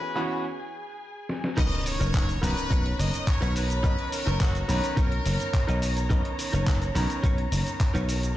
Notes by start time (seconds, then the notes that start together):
Already playing: E3 B3 C#4 F#4 G#4 B4 G#5
0.01 muted clean electric guitar stroke
0.15 E3 B3 C#4 F#4, muted clean electric guitar stroke, cabasa
0.31 cabasa
1.29 snare
1.44 snare
1.57 B1 D#3 B3 C#4 D#4 A#4 B4 C#5 D#5 A#5, kick, closed hi-hat, crash, impact, cabasa
1.72 closed hi-hat
1.86 C#5, open hi-hat, cabasa
1.99 F#1 D#4 A#4 B4 C#5, closed hi-hat, cabasa
2.14 kick, clap, closed hi-hat, cabasa
2.29 closed hi-hat, cabasa
2.41 B1 D#3 B3 C#4 B4 A#5, cross-stick, open hi-hat, cabasa
2.57 closed hi-hat, cabasa
2.70 B1 D#4 A#4 B4 C#5, kick, closed hi-hat, cabasa
2.86 closed hi-hat
2.98 F#1 D#5, muted clean electric guitar stroke, open hi-hat, cabasa
3.14 closed hi-hat, cabasa
3.27 C#5, kick, clap, closed hi-hat, cabasa
3.41 B1 D#4 A#4 B4 C#5, closed hi-hat, cabasa
3.56 B4, open hi-hat, cabasa
3.70 closed hi-hat, cabasa
3.83 B1 D#3 B3 C#4 D#4 A#4 B4 D#5 A#5, kick, closed hi-hat, cabasa
3.99 closed hi-hat
4.12 A#4, open hi-hat, cabasa
4.26 F#1 D#4 A#4 B4 C#5, clap, closed hi-hat, cabasa
4.41 F#4, kick, clap, closed hi-hat, cabasa
4.55 closed hi-hat, cabasa
4.68 B1 D#3 B3 C#4 B4 A#5, open hi-hat, cabasa
4.83 closed hi-hat, cabasa
4.96 B1 D#4 A#4 B4 C#5, kick, closed hi-hat, cabasa
5.12 closed hi-hat
5.25 F#1, muted clean electric guitar stroke, open hi-hat, cabasa
5.40 closed hi-hat, cabasa
5.54 kick, clap, closed hi-hat, cabasa
5.67 B1 D#4 A#4 B4 D#5, closed hi-hat, cabasa
5.82 open hi-hat, cabasa
5.97 closed hi-hat, cabasa
6.09 B1 D#3 B3 C#4 D#4 A#4 B4 D#5 A#5, kick, closed hi-hat, cabasa
6.25 closed hi-hat
6.39 open hi-hat, cabasa
6.52 F#1 D#4 A#4 B4 C#5, closed hi-hat, cabasa
6.67 kick, clap, closed hi-hat, cabasa
6.82 closed hi-hat, cabasa
6.95 B1 D#3 B3 C#4 A#5, cross-stick, open hi-hat, cabasa
7.10 closed hi-hat, cabasa
7.23 B1 D#4 A#4 B4 C#5, kick, closed hi-hat, cabasa
7.38 closed hi-hat
7.51 F#1, muted clean electric guitar stroke, open hi-hat, cabasa
7.67 closed hi-hat, cabasa
7.80 kick, clap, closed hi-hat, cabasa
7.94 B1 D#4 A#4 B4 C#5, closed hi-hat, cabasa
8.09 open hi-hat, cabasa
8.23 closed hi-hat, cabasa